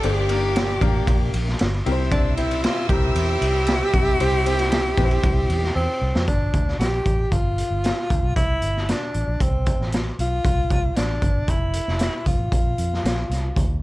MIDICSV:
0, 0, Header, 1, 7, 480
1, 0, Start_track
1, 0, Tempo, 520382
1, 36, Time_signature, 4, 2, 24, 8
1, 12751, End_track
2, 0, Start_track
2, 0, Title_t, "Violin section"
2, 0, Program_c, 0, 48
2, 0, Note_on_c, 0, 74, 99
2, 0, Note_on_c, 0, 86, 114
2, 1434, Note_off_c, 0, 86, 0
2, 1437, Note_off_c, 0, 74, 0
2, 1709, Note_on_c, 0, 76, 101
2, 1711, Note_on_c, 0, 88, 102
2, 5272, Note_off_c, 0, 76, 0
2, 5273, Note_off_c, 0, 88, 0
2, 12751, End_track
3, 0, Start_track
3, 0, Title_t, "Tenor saxophone"
3, 0, Program_c, 1, 66
3, 44, Note_on_c, 1, 67, 101
3, 1479, Note_off_c, 1, 67, 0
3, 1952, Note_on_c, 1, 62, 96
3, 2176, Note_off_c, 1, 62, 0
3, 2186, Note_on_c, 1, 64, 86
3, 2432, Note_on_c, 1, 65, 100
3, 2446, Note_off_c, 1, 64, 0
3, 2664, Note_off_c, 1, 65, 0
3, 2669, Note_on_c, 1, 67, 125
3, 5273, Note_off_c, 1, 67, 0
3, 5307, Note_on_c, 1, 60, 100
3, 5756, Note_off_c, 1, 60, 0
3, 5794, Note_on_c, 1, 62, 90
3, 6240, Note_off_c, 1, 62, 0
3, 6270, Note_on_c, 1, 67, 97
3, 6753, Note_on_c, 1, 65, 99
3, 6767, Note_off_c, 1, 67, 0
3, 7703, Note_off_c, 1, 65, 0
3, 7709, Note_on_c, 1, 64, 100
3, 8208, Note_on_c, 1, 62, 84
3, 8222, Note_off_c, 1, 64, 0
3, 8691, Note_on_c, 1, 60, 72
3, 8705, Note_off_c, 1, 62, 0
3, 9153, Note_off_c, 1, 60, 0
3, 9412, Note_on_c, 1, 65, 108
3, 10117, Note_on_c, 1, 62, 88
3, 10131, Note_off_c, 1, 65, 0
3, 10602, Note_on_c, 1, 64, 93
3, 10616, Note_off_c, 1, 62, 0
3, 11320, Note_off_c, 1, 64, 0
3, 11325, Note_on_c, 1, 65, 92
3, 12723, Note_off_c, 1, 65, 0
3, 12751, End_track
4, 0, Start_track
4, 0, Title_t, "Upright piano"
4, 0, Program_c, 2, 0
4, 35, Note_on_c, 2, 67, 75
4, 35, Note_on_c, 2, 72, 87
4, 37, Note_on_c, 2, 43, 65
4, 37, Note_on_c, 2, 62, 77
4, 39, Note_on_c, 2, 58, 72
4, 221, Note_off_c, 2, 67, 0
4, 221, Note_off_c, 2, 72, 0
4, 222, Note_off_c, 2, 62, 0
4, 223, Note_off_c, 2, 58, 0
4, 274, Note_on_c, 2, 58, 77
4, 274, Note_on_c, 2, 62, 65
4, 277, Note_on_c, 2, 70, 86
4, 278, Note_on_c, 2, 67, 64
4, 647, Note_off_c, 2, 58, 0
4, 647, Note_off_c, 2, 62, 0
4, 648, Note_off_c, 2, 70, 0
4, 649, Note_off_c, 2, 67, 0
4, 719, Note_off_c, 2, 43, 0
4, 743, Note_on_c, 2, 62, 88
4, 746, Note_on_c, 2, 67, 79
4, 748, Note_on_c, 2, 58, 96
4, 751, Note_on_c, 2, 70, 105
4, 1493, Note_off_c, 2, 62, 0
4, 1494, Note_off_c, 2, 67, 0
4, 1495, Note_off_c, 2, 58, 0
4, 1497, Note_off_c, 2, 70, 0
4, 1713, Note_on_c, 2, 64, 91
4, 1714, Note_on_c, 2, 48, 79
4, 1716, Note_on_c, 2, 67, 93
4, 1717, Note_on_c, 2, 70, 82
4, 1719, Note_on_c, 2, 60, 103
4, 1770, Note_on_c, 2, 72, 115
4, 1773, Note_off_c, 2, 70, 0
4, 2097, Note_off_c, 2, 64, 0
4, 2099, Note_off_c, 2, 67, 0
4, 2100, Note_off_c, 2, 60, 0
4, 2126, Note_off_c, 2, 72, 0
4, 2192, Note_on_c, 2, 72, 72
4, 2196, Note_on_c, 2, 60, 78
4, 2196, Note_on_c, 2, 64, 69
4, 2197, Note_on_c, 2, 67, 69
4, 2396, Note_off_c, 2, 48, 0
4, 2565, Note_off_c, 2, 72, 0
4, 2566, Note_off_c, 2, 60, 0
4, 2566, Note_off_c, 2, 64, 0
4, 2567, Note_off_c, 2, 67, 0
4, 2676, Note_on_c, 2, 60, 81
4, 2676, Note_on_c, 2, 64, 70
4, 2676, Note_on_c, 2, 67, 77
4, 2679, Note_on_c, 2, 70, 80
4, 3418, Note_off_c, 2, 60, 0
4, 3418, Note_off_c, 2, 64, 0
4, 3418, Note_off_c, 2, 67, 0
4, 3420, Note_off_c, 2, 70, 0
4, 3635, Note_on_c, 2, 48, 81
4, 3876, Note_on_c, 2, 60, 100
4, 3877, Note_on_c, 2, 64, 87
4, 3880, Note_on_c, 2, 67, 83
4, 3881, Note_on_c, 2, 72, 113
4, 4060, Note_off_c, 2, 60, 0
4, 4060, Note_off_c, 2, 64, 0
4, 4062, Note_off_c, 2, 67, 0
4, 4062, Note_off_c, 2, 72, 0
4, 4110, Note_on_c, 2, 64, 80
4, 4111, Note_on_c, 2, 60, 88
4, 4114, Note_on_c, 2, 67, 74
4, 4115, Note_on_c, 2, 72, 95
4, 4316, Note_off_c, 2, 48, 0
4, 4483, Note_off_c, 2, 60, 0
4, 4483, Note_off_c, 2, 64, 0
4, 4485, Note_off_c, 2, 67, 0
4, 4485, Note_off_c, 2, 72, 0
4, 4584, Note_on_c, 2, 60, 84
4, 4584, Note_on_c, 2, 64, 86
4, 4586, Note_on_c, 2, 71, 74
4, 4588, Note_on_c, 2, 67, 89
4, 4646, Note_off_c, 2, 71, 0
4, 4649, Note_on_c, 2, 72, 93
4, 5332, Note_off_c, 2, 60, 0
4, 5332, Note_off_c, 2, 64, 0
4, 5334, Note_off_c, 2, 67, 0
4, 5364, Note_off_c, 2, 72, 0
4, 12751, End_track
5, 0, Start_track
5, 0, Title_t, "Horn section"
5, 0, Program_c, 3, 61
5, 0, Note_on_c, 3, 58, 82
5, 0, Note_on_c, 3, 62, 85
5, 0, Note_on_c, 3, 67, 102
5, 1432, Note_off_c, 3, 67, 0
5, 1433, Note_off_c, 3, 58, 0
5, 1433, Note_off_c, 3, 62, 0
5, 1698, Note_on_c, 3, 60, 89
5, 1701, Note_on_c, 3, 64, 96
5, 1704, Note_on_c, 3, 55, 85
5, 5266, Note_off_c, 3, 60, 0
5, 5268, Note_off_c, 3, 64, 0
5, 5269, Note_off_c, 3, 55, 0
5, 12751, End_track
6, 0, Start_track
6, 0, Title_t, "Fingered electric bass"
6, 0, Program_c, 4, 33
6, 38, Note_on_c, 4, 31, 99
6, 720, Note_off_c, 4, 31, 0
6, 750, Note_on_c, 4, 33, 95
6, 935, Note_off_c, 4, 33, 0
6, 989, Note_on_c, 4, 34, 110
6, 1174, Note_off_c, 4, 34, 0
6, 1236, Note_on_c, 4, 34, 96
6, 1418, Note_off_c, 4, 34, 0
6, 1485, Note_on_c, 4, 31, 91
6, 1664, Note_off_c, 4, 31, 0
6, 1719, Note_on_c, 4, 36, 101
6, 2448, Note_off_c, 4, 36, 0
6, 2667, Note_on_c, 4, 36, 97
6, 2852, Note_off_c, 4, 36, 0
6, 2907, Note_on_c, 4, 40, 111
6, 3092, Note_off_c, 4, 40, 0
6, 3148, Note_on_c, 4, 36, 90
6, 3516, Note_off_c, 4, 36, 0
6, 3629, Note_on_c, 4, 35, 104
6, 3813, Note_off_c, 4, 35, 0
6, 3871, Note_on_c, 4, 36, 102
6, 4555, Note_off_c, 4, 36, 0
6, 4591, Note_on_c, 4, 34, 100
6, 4774, Note_off_c, 4, 34, 0
6, 4829, Note_on_c, 4, 36, 106
6, 5013, Note_off_c, 4, 36, 0
6, 5067, Note_on_c, 4, 40, 95
6, 5252, Note_off_c, 4, 40, 0
6, 5311, Note_on_c, 4, 40, 97
6, 5402, Note_off_c, 4, 40, 0
6, 5549, Note_on_c, 4, 36, 85
6, 5641, Note_off_c, 4, 36, 0
6, 5676, Note_on_c, 4, 41, 92
6, 5766, Note_off_c, 4, 41, 0
6, 5795, Note_on_c, 4, 31, 90
6, 5977, Note_off_c, 4, 31, 0
6, 6030, Note_on_c, 4, 38, 76
6, 6214, Note_off_c, 4, 38, 0
6, 6266, Note_on_c, 4, 34, 80
6, 6451, Note_off_c, 4, 34, 0
6, 6509, Note_on_c, 4, 33, 90
6, 6693, Note_off_c, 4, 33, 0
6, 6750, Note_on_c, 4, 31, 98
6, 7026, Note_off_c, 4, 31, 0
6, 7107, Note_on_c, 4, 31, 77
6, 7292, Note_off_c, 4, 31, 0
6, 7475, Note_on_c, 4, 38, 81
6, 7566, Note_off_c, 4, 38, 0
6, 7589, Note_on_c, 4, 35, 89
6, 7683, Note_off_c, 4, 35, 0
6, 7715, Note_on_c, 4, 36, 83
6, 7898, Note_off_c, 4, 36, 0
6, 7950, Note_on_c, 4, 31, 85
6, 8227, Note_off_c, 4, 31, 0
6, 8438, Note_on_c, 4, 33, 84
6, 8529, Note_off_c, 4, 33, 0
6, 8556, Note_on_c, 4, 34, 97
6, 8647, Note_off_c, 4, 34, 0
6, 8675, Note_on_c, 4, 36, 104
6, 8950, Note_off_c, 4, 36, 0
6, 9037, Note_on_c, 4, 33, 74
6, 9312, Note_off_c, 4, 33, 0
6, 9398, Note_on_c, 4, 35, 89
6, 9581, Note_off_c, 4, 35, 0
6, 9636, Note_on_c, 4, 36, 95
6, 9819, Note_off_c, 4, 36, 0
6, 9877, Note_on_c, 4, 36, 84
6, 10060, Note_off_c, 4, 36, 0
6, 10118, Note_on_c, 4, 33, 78
6, 10301, Note_off_c, 4, 33, 0
6, 10351, Note_on_c, 4, 31, 91
6, 10537, Note_off_c, 4, 31, 0
6, 10590, Note_on_c, 4, 29, 101
6, 10867, Note_off_c, 4, 29, 0
6, 10958, Note_on_c, 4, 29, 76
6, 11141, Note_off_c, 4, 29, 0
6, 11307, Note_on_c, 4, 36, 90
6, 11402, Note_off_c, 4, 36, 0
6, 11431, Note_on_c, 4, 33, 88
6, 11525, Note_off_c, 4, 33, 0
6, 11547, Note_on_c, 4, 34, 90
6, 11734, Note_off_c, 4, 34, 0
6, 11793, Note_on_c, 4, 41, 82
6, 11977, Note_off_c, 4, 41, 0
6, 12024, Note_on_c, 4, 34, 79
6, 12212, Note_off_c, 4, 34, 0
6, 12264, Note_on_c, 4, 36, 77
6, 12452, Note_off_c, 4, 36, 0
6, 12512, Note_on_c, 4, 38, 97
6, 12751, Note_off_c, 4, 38, 0
6, 12751, End_track
7, 0, Start_track
7, 0, Title_t, "Drums"
7, 30, Note_on_c, 9, 51, 64
7, 122, Note_off_c, 9, 51, 0
7, 267, Note_on_c, 9, 51, 62
7, 359, Note_off_c, 9, 51, 0
7, 514, Note_on_c, 9, 51, 84
7, 521, Note_on_c, 9, 38, 120
7, 606, Note_off_c, 9, 51, 0
7, 614, Note_off_c, 9, 38, 0
7, 751, Note_on_c, 9, 36, 99
7, 754, Note_on_c, 9, 51, 65
7, 843, Note_off_c, 9, 36, 0
7, 846, Note_off_c, 9, 51, 0
7, 991, Note_on_c, 9, 36, 100
7, 991, Note_on_c, 9, 51, 84
7, 1083, Note_off_c, 9, 36, 0
7, 1084, Note_off_c, 9, 51, 0
7, 1232, Note_on_c, 9, 51, 73
7, 1325, Note_off_c, 9, 51, 0
7, 1369, Note_on_c, 9, 38, 36
7, 1461, Note_off_c, 9, 38, 0
7, 1466, Note_on_c, 9, 51, 73
7, 1484, Note_on_c, 9, 38, 115
7, 1558, Note_off_c, 9, 51, 0
7, 1576, Note_off_c, 9, 38, 0
7, 1718, Note_on_c, 9, 51, 67
7, 1810, Note_off_c, 9, 51, 0
7, 1952, Note_on_c, 9, 36, 112
7, 1952, Note_on_c, 9, 51, 68
7, 2044, Note_off_c, 9, 36, 0
7, 2044, Note_off_c, 9, 51, 0
7, 2189, Note_on_c, 9, 51, 60
7, 2281, Note_off_c, 9, 51, 0
7, 2315, Note_on_c, 9, 51, 47
7, 2407, Note_off_c, 9, 51, 0
7, 2432, Note_on_c, 9, 51, 82
7, 2439, Note_on_c, 9, 38, 106
7, 2524, Note_off_c, 9, 51, 0
7, 2531, Note_off_c, 9, 38, 0
7, 2668, Note_on_c, 9, 36, 95
7, 2671, Note_on_c, 9, 51, 63
7, 2760, Note_off_c, 9, 36, 0
7, 2763, Note_off_c, 9, 51, 0
7, 2911, Note_on_c, 9, 51, 85
7, 3003, Note_off_c, 9, 51, 0
7, 3152, Note_on_c, 9, 51, 73
7, 3244, Note_off_c, 9, 51, 0
7, 3381, Note_on_c, 9, 51, 75
7, 3399, Note_on_c, 9, 38, 127
7, 3473, Note_off_c, 9, 51, 0
7, 3491, Note_off_c, 9, 38, 0
7, 3630, Note_on_c, 9, 51, 66
7, 3631, Note_on_c, 9, 36, 96
7, 3722, Note_off_c, 9, 51, 0
7, 3723, Note_off_c, 9, 36, 0
7, 3874, Note_on_c, 9, 51, 72
7, 3967, Note_off_c, 9, 51, 0
7, 4114, Note_on_c, 9, 51, 64
7, 4206, Note_off_c, 9, 51, 0
7, 4232, Note_on_c, 9, 51, 47
7, 4243, Note_on_c, 9, 38, 40
7, 4324, Note_off_c, 9, 51, 0
7, 4335, Note_off_c, 9, 38, 0
7, 4350, Note_on_c, 9, 51, 84
7, 4357, Note_on_c, 9, 38, 116
7, 4442, Note_off_c, 9, 51, 0
7, 4449, Note_off_c, 9, 38, 0
7, 4589, Note_on_c, 9, 36, 95
7, 4589, Note_on_c, 9, 51, 67
7, 4597, Note_on_c, 9, 38, 33
7, 4681, Note_off_c, 9, 36, 0
7, 4682, Note_off_c, 9, 51, 0
7, 4690, Note_off_c, 9, 38, 0
7, 4713, Note_on_c, 9, 51, 44
7, 4805, Note_off_c, 9, 51, 0
7, 4826, Note_on_c, 9, 51, 78
7, 4829, Note_on_c, 9, 36, 95
7, 4919, Note_off_c, 9, 51, 0
7, 4921, Note_off_c, 9, 36, 0
7, 5070, Note_on_c, 9, 51, 69
7, 5162, Note_off_c, 9, 51, 0
7, 5201, Note_on_c, 9, 38, 41
7, 5293, Note_off_c, 9, 38, 0
7, 5676, Note_on_c, 9, 38, 95
7, 5769, Note_off_c, 9, 38, 0
7, 5789, Note_on_c, 9, 42, 79
7, 5791, Note_on_c, 9, 36, 92
7, 5881, Note_off_c, 9, 42, 0
7, 5883, Note_off_c, 9, 36, 0
7, 6029, Note_on_c, 9, 42, 63
7, 6030, Note_on_c, 9, 36, 86
7, 6121, Note_off_c, 9, 42, 0
7, 6123, Note_off_c, 9, 36, 0
7, 6163, Note_on_c, 9, 38, 33
7, 6255, Note_off_c, 9, 38, 0
7, 6277, Note_on_c, 9, 42, 91
7, 6284, Note_on_c, 9, 38, 100
7, 6369, Note_off_c, 9, 42, 0
7, 6376, Note_off_c, 9, 38, 0
7, 6510, Note_on_c, 9, 36, 85
7, 6510, Note_on_c, 9, 42, 70
7, 6602, Note_off_c, 9, 36, 0
7, 6602, Note_off_c, 9, 42, 0
7, 6749, Note_on_c, 9, 42, 85
7, 6750, Note_on_c, 9, 36, 82
7, 6841, Note_off_c, 9, 42, 0
7, 6843, Note_off_c, 9, 36, 0
7, 6991, Note_on_c, 9, 42, 85
7, 7083, Note_off_c, 9, 42, 0
7, 7229, Note_on_c, 9, 42, 79
7, 7247, Note_on_c, 9, 38, 122
7, 7321, Note_off_c, 9, 42, 0
7, 7339, Note_off_c, 9, 38, 0
7, 7472, Note_on_c, 9, 42, 77
7, 7474, Note_on_c, 9, 36, 89
7, 7564, Note_off_c, 9, 42, 0
7, 7567, Note_off_c, 9, 36, 0
7, 7712, Note_on_c, 9, 42, 83
7, 7714, Note_on_c, 9, 36, 96
7, 7804, Note_off_c, 9, 42, 0
7, 7806, Note_off_c, 9, 36, 0
7, 7947, Note_on_c, 9, 42, 65
7, 8040, Note_off_c, 9, 42, 0
7, 8089, Note_on_c, 9, 38, 33
7, 8181, Note_off_c, 9, 38, 0
7, 8195, Note_on_c, 9, 42, 99
7, 8202, Note_on_c, 9, 38, 105
7, 8288, Note_off_c, 9, 42, 0
7, 8295, Note_off_c, 9, 38, 0
7, 8432, Note_on_c, 9, 42, 67
7, 8525, Note_off_c, 9, 42, 0
7, 8674, Note_on_c, 9, 42, 102
7, 8675, Note_on_c, 9, 36, 88
7, 8766, Note_off_c, 9, 42, 0
7, 8767, Note_off_c, 9, 36, 0
7, 8912, Note_on_c, 9, 42, 90
7, 8918, Note_on_c, 9, 36, 83
7, 9004, Note_off_c, 9, 42, 0
7, 9010, Note_off_c, 9, 36, 0
7, 9052, Note_on_c, 9, 38, 35
7, 9144, Note_off_c, 9, 38, 0
7, 9152, Note_on_c, 9, 42, 89
7, 9170, Note_on_c, 9, 38, 119
7, 9244, Note_off_c, 9, 42, 0
7, 9262, Note_off_c, 9, 38, 0
7, 9399, Note_on_c, 9, 42, 86
7, 9491, Note_off_c, 9, 42, 0
7, 9635, Note_on_c, 9, 36, 102
7, 9639, Note_on_c, 9, 42, 76
7, 9728, Note_off_c, 9, 36, 0
7, 9731, Note_off_c, 9, 42, 0
7, 9873, Note_on_c, 9, 42, 63
7, 9874, Note_on_c, 9, 36, 85
7, 9965, Note_off_c, 9, 42, 0
7, 9966, Note_off_c, 9, 36, 0
7, 10112, Note_on_c, 9, 42, 105
7, 10119, Note_on_c, 9, 38, 105
7, 10204, Note_off_c, 9, 42, 0
7, 10211, Note_off_c, 9, 38, 0
7, 10350, Note_on_c, 9, 36, 91
7, 10351, Note_on_c, 9, 42, 73
7, 10442, Note_off_c, 9, 36, 0
7, 10443, Note_off_c, 9, 42, 0
7, 10586, Note_on_c, 9, 42, 92
7, 10590, Note_on_c, 9, 36, 80
7, 10679, Note_off_c, 9, 42, 0
7, 10682, Note_off_c, 9, 36, 0
7, 10824, Note_on_c, 9, 42, 88
7, 10916, Note_off_c, 9, 42, 0
7, 10957, Note_on_c, 9, 38, 38
7, 11050, Note_off_c, 9, 38, 0
7, 11059, Note_on_c, 9, 42, 93
7, 11077, Note_on_c, 9, 38, 108
7, 11151, Note_off_c, 9, 42, 0
7, 11169, Note_off_c, 9, 38, 0
7, 11308, Note_on_c, 9, 42, 79
7, 11310, Note_on_c, 9, 36, 89
7, 11400, Note_off_c, 9, 42, 0
7, 11402, Note_off_c, 9, 36, 0
7, 11549, Note_on_c, 9, 36, 92
7, 11549, Note_on_c, 9, 42, 82
7, 11641, Note_off_c, 9, 36, 0
7, 11641, Note_off_c, 9, 42, 0
7, 11788, Note_on_c, 9, 42, 69
7, 11880, Note_off_c, 9, 42, 0
7, 11932, Note_on_c, 9, 38, 38
7, 12025, Note_off_c, 9, 38, 0
7, 12040, Note_on_c, 9, 42, 101
7, 12047, Note_on_c, 9, 38, 110
7, 12132, Note_off_c, 9, 42, 0
7, 12139, Note_off_c, 9, 38, 0
7, 12280, Note_on_c, 9, 42, 78
7, 12288, Note_on_c, 9, 38, 32
7, 12372, Note_off_c, 9, 42, 0
7, 12380, Note_off_c, 9, 38, 0
7, 12512, Note_on_c, 9, 36, 85
7, 12517, Note_on_c, 9, 42, 90
7, 12604, Note_off_c, 9, 36, 0
7, 12609, Note_off_c, 9, 42, 0
7, 12751, End_track
0, 0, End_of_file